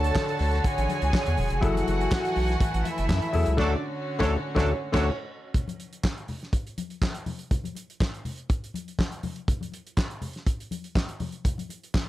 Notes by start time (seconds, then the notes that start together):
Already playing: D2 D3 D4 F#4 A4 C#5 A5
0.04 closed hi-hat
0.15 kick, snare, clap, high conga
0.28 closed hi-hat
0.39 D2, open hi-hat, muted conga
0.51 snare, closed hi-hat
0.64 G#4 G#5, kick, closed hi-hat, muted conga
0.78 A1, closed hi-hat
0.89 closed hi-hat, muted conga, high conga
1.02 C#2, closed hi-hat
1.13 kick, snare, clap, muted conga, high conga
1.26 E2, closed hi-hat
1.37 E1, open hi-hat, high conga, low conga
1.50 F1, closed hi-hat
1.61 F#1 E3 F#3 A3 E4 F#4 G#4 A4 F#5 G#5, kick, closed hi-hat, low conga
1.75 closed hi-hat, high conga
1.88 F#1, closed hi-hat
2.01 closed hi-hat
2.11 kick, snare, clap, high conga
2.25 closed hi-hat
2.36 B1, open hi-hat, muted conga
2.48 snare, closed hi-hat
2.60 kick, closed hi-hat
2.74 A1, closed hi-hat
2.85 E4 E5, closed hi-hat, high conga
2.98 F#1, closed hi-hat
3.09 F#2, kick, snare, clap, high conga
3.22 closed hi-hat
3.33 E2 F#3 E4 G#4 A4, open hi-hat, high conga, low conga
3.46 C#2, closed hi-hat
3.57 D2 D3 F#3 A3 C#4 D4 F#4 A4 C#5 D5, kick, snare, crash
4.19 D2 D3 F#3 A3 C#4 D4 F#4 A4 C#5, kick, snare
4.55 D2 D3 F#3 A3 C#4 D4 F#4 A4 C#5, kick, snare
4.92 D2 D3 F#3 A3 C#4 D4 F#4 A4 C#5, kick, snare, crash
5.54 kick, closed hi-hat, muted conga, low conga
5.68 closed hi-hat, high conga
5.80 closed hi-hat
5.93 closed hi-hat
6.04 kick, snare, clap
6.17 closed hi-hat
6.28 open hi-hat, low conga
6.40 snare, closed hi-hat
6.53 kick, closed hi-hat, muted conga
6.67 closed hi-hat
6.78 closed hi-hat, high conga
6.90 closed hi-hat
7.02 kick, snare, clap, muted conga, high conga
7.15 closed hi-hat
7.26 open hi-hat, high conga, low conga
7.39 closed hi-hat
7.51 kick, closed hi-hat, muted conga, low conga
7.64 closed hi-hat, high conga
7.75 closed hi-hat, muted conga
7.90 closed hi-hat
8.00 kick, snare, clap
8.14 closed hi-hat
8.25 open hi-hat, muted conga, low conga
8.37 closed hi-hat
8.50 kick, closed hi-hat
8.64 closed hi-hat
8.74 closed hi-hat, high conga
8.88 closed hi-hat
8.99 kick, snare, clap, high conga
9.12 closed hi-hat
9.23 open hi-hat, muted conga, high conga, low conga
9.36 closed hi-hat
9.48 kick, closed hi-hat, muted conga, low conga
9.61 closed hi-hat, high conga
9.72 closed hi-hat, muted conga
9.87 closed hi-hat
9.97 kick, snare, clap
10.11 closed hi-hat
10.22 open hi-hat, muted conga, low conga
10.33 snare, closed hi-hat
10.47 kick, closed hi-hat, muted conga
10.60 closed hi-hat
10.71 closed hi-hat, muted conga, high conga
10.84 closed hi-hat
10.95 kick, snare, clap, high conga
11.08 closed hi-hat
11.20 open hi-hat, muted conga, high conga, low conga
11.32 closed hi-hat
11.45 kick, closed hi-hat, muted conga, low conga
11.58 closed hi-hat, high conga
11.69 closed hi-hat, muted conga
11.83 closed hi-hat
11.94 kick, snare, clap, muted conga, high conga